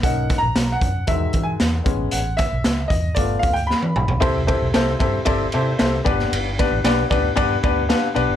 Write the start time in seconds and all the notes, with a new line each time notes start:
0.03 B1 A#3 C#4 D#4 F#5, kick, closed hi-hat
0.29 kick, snare, closed hi-hat
0.38 A#5
0.43 A#1
0.56 B1, snare, closed hi-hat
0.72 F#5
0.81 F#2, kick, closed hi-hat
1.07 E2 D#3 F#3 G#3 E5, kick, closed hi-hat
1.33 E3, kick, closed hi-hat
1.43 G#5
1.60 E2, snare, closed hi-hat
1.84 A1 G#3 B3 C#4, kick, closed hi-hat
2.11 A1 F#5, closed hi-hat
2.37 E5, kick, snare, closed hi-hat
2.53 B1
2.64 C#2, snare, closed hi-hat
2.88 E2 D#5, kick, closed hi-hat
3.15 G1 A3 B3 F4 D5, kick, closed hi-hat
3.39 F5, kick, closed hi-hat
3.43 D2
3.53 G5, closed hi-hat
3.67 B5, snare
3.83 high tom
3.96 B1, mid tom
4.08 B1, floor tom
4.20 C4 E4 G4 A4 C5, kick, ride
4.47 C4 E4 G4 A4 C5, kick, ride
4.62 B1
4.73 C2 C4 E4 G4 A4 C5, snare, ride
4.99 G2 C4 E4 G4 A4 C5, kick, ride
5.25 G1 C4 E4 G4 A4 D5, kick, ride
5.52 C3 C4 E4 G4 A4 C5, ride
5.78 C2 C4 E4 G4 A4 C5, snare, ride
6.04 G1 B3 D4 G4 B4 D5, kick, ride
6.19 snare
6.32 G1, ride
6.59 B3 D4 G4 B4 D5, kick, snare, ride
6.71 A1
6.84 B1 B3 D4 G4 B4 D5, snare, ride
7.10 D2 B3 D4 G4 B4 D5, kick, ride
7.35 G2 B3 D4 G4 B4 D5, kick, ride
7.63 D2 B3 D4 G4 B4 D5, kick, ride
7.88 B3 D4 G4 B4 F5, snare, ride
8.14 B1 B3 D4 G4 B4 D5, ride
8.30 G1